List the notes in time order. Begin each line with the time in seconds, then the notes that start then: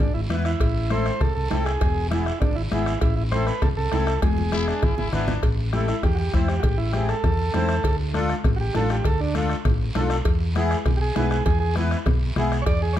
0.00 G#1 D4, bombo low, bombo rim, cowbell, high conga, low conga
0.14 G#1 E4
0.29 E2 B3 E4 B4, bombo rim, high conga, short guiro
0.45 E4, bombo rim, short guiro
0.60 A1, bombo low, bombo rim, cowbell, high conga, long guiro
0.90 C4 E4 A4 C5, bombo rim, high conga, short guiro
1.06 bombo rim, short guiro
1.21 C2 A4, bombo low, bombo rim, cowbell, high conga, low conga, long guiro
1.35 C2 A4
1.50 C2 C4 E4 A4, bombo rim, high conga, low timbale, short guiro
1.65 G#4, bombo rim, short guiro
1.81 E1, bombo low, bombo rim, cowbell, high conga, long guiro
2.11 B3 E4 G#4, bombo rim, high conga, short guiro
2.26 bombo rim, short guiro
2.40 G#1 D4, bombo low, bombo rim, cowbell, high conga, low conga, long guiro
2.55 G#1 E4
2.71 G#1 B3 E4 G#4, bombo rim, high conga, short guiro
2.86 bombo rim, short guiro
3.01 A1 E4, bombo low, bombo rim, cowbell, high conga, long guiro
3.16 E4
3.31 C4 E4 A4 C5, bombo rim, high conga, short guiro
3.46 B4, bombo rim, short guiro
3.62 C2 A4, bombo low, bombo rim, cowbell, high conga, low conga, long guiro
3.77 C2 A4
3.92 C2 C4 E4 A4, bombo rim, high conga, low timbale, short guiro
4.06 A4, bombo rim, short guiro
4.22 E1 G#4, bombo low, bombo rim, cowbell, high conga, long guiro
4.38 high conga
4.52 B3 E4 G#4, bombo rim, high conga, short guiro
4.68 D4, bombo rim, short guiro
4.82 G#1 E4, bombo low, bombo rim, cowbell, low conga, long guiro
4.97 G#1 E4, low conga
5.12 G#1 B3 D4 E4 B4, bombo rim, low conga, short guiro
5.28 bombo rim, low conga, short guiro
5.43 A1, bombo low, bombo rim, cowbell, high conga, long guiro
5.73 C4 E4 G4 A4, bombo rim, high conga, short guiro
5.88 E4, bombo rim, short guiro
6.03 E2 G4, bombo low, bombo rim, cowbell, high conga, low conga, long guiro
6.15 F#4
6.19 G4
6.33 E2 C4 E4 C5, bombo low, bombo rim, high conga, short guiro
6.48 G4, bombo rim, short guiro
6.60 F#4, bombo low, bombo rim, cowbell
6.64 A1 G4, high conga, low conga, long guiro
6.78 E4
6.93 C4 E4 G4 G#4, bombo rim, high conga, short guiro
7.09 A4, bombo rim, short guiro
7.24 E2, bombo low, bombo rim, cowbell, high conga, low conga, long guiro
7.53 E2 C4 E4 C5, bombo rim, high conga, low timbale, short guiro
7.69 bombo rim, short guiro
7.83 D2, bombo low, bombo rim, cowbell, high conga, long guiro
8.14 D4 F4 A4, bombo rim, high conga, short guiro
8.29 bombo rim, short guiro
8.44 A1, bombo low, bombo rim, cowbell, high conga, low conga, long guiro
8.56 F#4
8.60 G4
8.74 A1 D4 F4 A4, bombo rim, high conga, low timbale, short guiro
8.89 G4, bombo rim, short guiro
9.04 D2 A4, bombo low, bombo rim, cowbell, high conga, long guiro
9.21 D4
9.35 D4 F4 A4, bombo rim, high conga, short guiro
9.49 bombo rim, short guiro
9.65 A1, bombo low, bombo rim, cowbell, high conga, low conga, long guiro
9.95 B1 D4 F4 A4, bombo rim, high conga, low timbale, short guiro
10.10 bombo rim, short guiro
10.25 E2, bombo low, bombo rim, cowbell, high conga, long guiro
10.55 B3 E4 G#4, bombo rim, high conga, short guiro
10.71 bombo rim, short guiro
10.86 B1, bombo low, bombo rim, cowbell, high conga, low conga, long guiro
10.97 G4
11.01 G#4
11.16 B1 B3 E4 G#4 B4, bombo rim, high conga, low timbale, short guiro
11.31 G#4, bombo rim, short guiro
11.45 E2 G#4, bombo low, bombo rim, cowbell, high conga, low conga, long guiro
11.60 G#4
11.76 B3 E4 B4, bombo rim, high conga, short guiro
11.91 bombo rim, short guiro
12.06 B1, bombo low, bombo rim, cowbell, high conga, low conga, long guiro
12.36 B1 B3 E4 G#4, bombo rim, high conga, low conga, short guiro
12.52 bombo rim, short guiro
12.62 C#5
12.66 E2 D5, bombo low, bombo rim, cowbell, long guiro
12.82 G#4
12.93 B3 E4 C#5, bombo rim